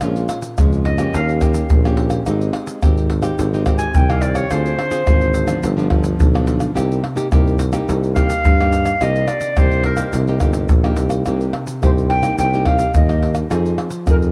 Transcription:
0.01 A#1 A#2 G#3 C#4 F4, pandeiro, tamborim, shaker, surdo
0.16 pandeiro, shaker
0.29 pandeiro, tamborim, shaker
0.42 pandeiro, shaker
0.58 C#2 F2 G#3 C#4 F4, pandeiro, tamborim, shaker, surdo
0.72 pandeiro, shaker
0.85 D#5, pandeiro
0.98 A#3 C#4 G4, pandeiro, tamborim, shaker
1.14 D#2 D#3 F5, pandeiro, shaker, surdo
1.29 pandeiro, shaker
1.41 A#3 C#4 G4, pandeiro, tamborim, shaker, surdo
1.54 pandeiro, shaker
1.70 A#1 A#2, pandeiro, shaker, surdo
1.85 A#3 C#4 G4, pandeiro, tamborim, shaker
1.97 pandeiro
2.10 pandeiro, tamborim, shaker
2.26 G#1 G#3 C4 D#4 G4, pandeiro, tamborim, shaker, surdo
2.41 pandeiro, shaker
2.53 pandeiro, tamborim
2.67 pandeiro, shaker
2.82 G#1 D#3 C4 D#4 G4, pandeiro, tamborim, shaker, surdo
2.97 pandeiro, shaker
3.10 pandeiro
3.22 C4 D#4 G4, pandeiro, tamborim, shaker
3.39 G#1 G#3, pandeiro, shaker, surdo
3.53 C4 D#4 G4, pandeiro, shaker
3.66 C4 D#4 G4, pandeiro, tamborim, shaker, surdo
3.78 G#5, pandeiro, shaker
3.94 C2 D#3 G5, pandeiro, shaker, surdo
4.10 C4 D#4 G4 F5, pandeiro, tamborim, shaker
4.21 D5, pandeiro, shaker
4.35 C#5, pandeiro, tamborim, shaker
4.50 D2 D3 C4 F4 G#4 C5, pandeiro, tamborim, shaker, surdo
4.66 pandeiro, shaker
4.79 pandeiro, tamborim
4.91 C4 F4 G#4, pandeiro, shaker
5.06 G#1 D3 C4 F4 G#4, pandeiro, tamborim, shaker, surdo
5.21 pandeiro, shaker
5.34 pandeiro, shaker
5.46 F3 B3 D4, pandeiro, tamborim, shaker
5.63 G1 G2, pandeiro, shaker, surdo
5.77 F3 B3 D4, pandeiro, shaker
5.90 F3 B3 D4, pandeiro, tamborim, surdo
6.04 pandeiro, shaker
6.19 B1 D3, pandeiro, shaker, surdo
6.34 F3 B3 D4, pandeiro, tamborim, shaker
6.47 pandeiro, shaker
6.60 pandeiro, tamborim, shaker
6.75 C2 C3 A#3 D#4 G4, pandeiro, tamborim, shaker, surdo
6.92 pandeiro, shaker
7.04 pandeiro, tamborim
7.16 A#3 D#4 G4, pandeiro, shaker
7.32 C2 G2 A#3 D#4 G4, pandeiro, tamborim, shaker, surdo
7.47 pandeiro, shaker
7.59 pandeiro, shaker
7.73 A#3 D#4 G4, pandeiro, tamborim, shaker
7.89 C2 C3, pandeiro, shaker, surdo
8.04 pandeiro, shaker
8.15 A#3 D#4 G4 F5, pandeiro, tamborim, shaker, surdo
8.30 pandeiro, shaker
8.45 G2, pandeiro, shaker, surdo
8.60 A#3 D#4 G4, pandeiro, tamborim, shaker
8.73 pandeiro, shaker
8.85 pandeiro, tamborim, shaker
9.01 C2 C3 A#3 D#4 G4 D#5, pandeiro, tamborim, shaker, surdo
9.16 pandeiro, shaker
9.28 D5, pandeiro, tamborim, shaker
9.41 pandeiro, shaker
9.57 C2 G2 A#3 D#4 G4 C5, pandeiro, tamborim, shaker, surdo
9.71 pandeiro, shaker
9.83 A#4, pandeiro
9.97 A#3 D#4 G4, pandeiro, tamborim, shaker
10.13 C2 C3, pandeiro, shaker, surdo
10.27 A#3 D#4 G4, pandeiro, shaker
10.40 G1 A#3 D#4 G4, pandeiro, tamborim, shaker, surdo
10.53 pandeiro, shaker
10.69 A#1 G2, pandeiro, shaker, surdo
10.84 A#3 D#4 G4, pandeiro, tamborim, shaker
10.96 C2, pandeiro, shaker
11.10 pandeiro, tamborim, shaker
11.26 C2 C3 A#3 D#4 G4, pandeiro, tamborim, shaker, surdo
11.41 pandeiro, shaker
11.53 pandeiro, tamborim
11.67 pandeiro, shaker
11.82 C2 G2 A#3 D#4 G4 C5, pandeiro, tamborim, shaker, surdo
11.98 pandeiro, shaker
12.09 G5, pandeiro
12.22 A#3 D#4 G4, pandeiro, tamborim, shaker
12.38 C2 C3 G5, pandeiro, shaker, surdo
12.53 A#3 D#4 G4, pandeiro, shaker
12.65 A#3 D#4 G4 F5, pandeiro, tamborim, surdo
12.79 pandeiro, shaker
12.94 D#2 G2 D#5, pandeiro, shaker, surdo
13.09 A#3 D#4 G4, pandeiro, tamborim, shaker
13.22 pandeiro
13.35 pandeiro, tamborim, shaker
13.50 F2 F3 C4 D#4 G#4, pandeiro, tamborim, shaker, surdo
13.66 pandeiro, shaker
13.78 pandeiro, tamborim
13.90 pandeiro, shaker
14.07 F2 C3 C4 D#4 G#4 A#4, pandeiro, tamborim, shaker, surdo
14.22 pandeiro, shaker

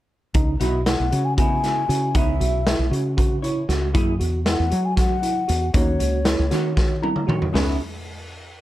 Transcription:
0.34 C#2 D#4, kick, closed hi-hat
0.60 B1 B3 D#4 E4 F#4, closed hi-hat
0.86 E4 F#5, snare, closed hi-hat
1.00 B1
1.12 C#3 F#4, closed hi-hat
1.25 G#5
1.37 B3 D#4 E4 F#4 G#5, kick, closed hi-hat
1.63 E4, snare, closed hi-hat
1.89 C#3 F#4, closed hi-hat
2.15 C#2 B3 C#4 D#4 E4 G#4 E5, kick, closed hi-hat
2.40 B1 F#4, closed hi-hat
2.66 E4, snare, closed hi-hat
2.79 B1
2.91 C#3 F#4, closed hi-hat
3.17 F#4, kick, closed hi-hat
3.42 E4 C#5, closed hi-hat
3.69 C#2 F#4, snare, closed hi-hat
3.94 F#2 A#3 E4 G#4, kick, closed hi-hat
4.19 E2 F#4, closed hi-hat
4.46 E4 F#5, snare, closed hi-hat
4.60 E2
4.71 F#3 F#4, closed hi-hat
4.85 G#5
4.97 F#4 F#5, kick, snare, closed hi-hat
5.22 E4, closed hi-hat
5.48 E2 F#4, closed hi-hat
5.73 D#2 A#3 C#4 D#4 F#4 C#5, kick, closed hi-hat
6.00 C#2 F#4, closed hi-hat
6.25 E4, snare, closed hi-hat
6.39 C#2
6.51 D#3 A#3 C#4 F#4, snare, closed hi-hat
6.76 F#4, kick, snare
7.02 E4 A#5, high tom
7.16 mid tom
7.27 D#3 F#4 C#5, mid tom
7.42 floor tom
7.53 C#2 B3 C#4 D#4 E4 F#4, snare, open hi-hat

